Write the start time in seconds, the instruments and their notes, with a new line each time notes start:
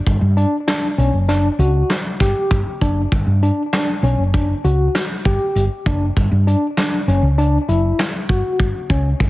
0.07 fretless electric bass G1, kick, closed hi-hat
0.21 fretless electric bass G2
0.37 tine electric piano D4, closed hi-hat
0.68 tine electric piano D4, snare, closed hi-hat
0.98 fretless electric bass B1, tine electric piano C#4, closed hi-hat
1.13 fretless electric bass F#1
1.29 tine electric piano D4, snare, closed hi-hat
1.59 fretless electric bass C#2, tine electric piano F#4, closed hi-hat
1.90 snare, closed hi-hat
2.20 fretless electric bass G1, tine electric piano G4, kick, snare, closed hi-hat
2.51 fretless electric bass G1, kick, closed hi-hat
2.81 fretless electric bass F#1, tine electric piano D4, kick, closed hi-hat
3.12 fretless electric bass G1, kick, closed hi-hat
3.26 fretless electric bass G2
3.43 tine electric piano D4, closed hi-hat
3.73 tine electric piano D4, snare, closed hi-hat
4.03 fretless electric bass B1, tine electric piano C#4, closed hi-hat
4.18 fretless electric bass F#1
4.34 tine electric piano D4, kick, closed hi-hat
4.64 fretless electric bass C#2, tine electric piano F#4, closed hi-hat
4.95 snare, closed hi-hat
5.25 fretless electric bass G1, tine electric piano G4, kick, closed hi-hat
5.55 fretless electric bass G1, closed hi-hat
5.86 fretless electric bass F#1, tine electric piano D4, kick, closed hi-hat
6.17 fretless electric bass G1, kick, closed hi-hat
6.31 fretless electric bass G2
6.47 tine electric piano D4, closed hi-hat
6.77 tine electric piano D4, snare, closed hi-hat
7.07 fretless electric bass F#1, tine electric piano C#4, closed hi-hat
7.22 fretless electric bass C#2
7.38 tine electric piano D4, closed hi-hat
7.68 fretless electric bass F#1, tine electric piano E4, closed hi-hat
7.99 snare, closed hi-hat
8.29 fretless electric bass G1, tine electric piano F#4, kick, closed hi-hat
8.59 fretless electric bass G1, kick, closed hi-hat
8.90 fretless electric bass C#2, tine electric piano C#4, kick, closed hi-hat
9.20 fretless electric bass G1, kick, closed hi-hat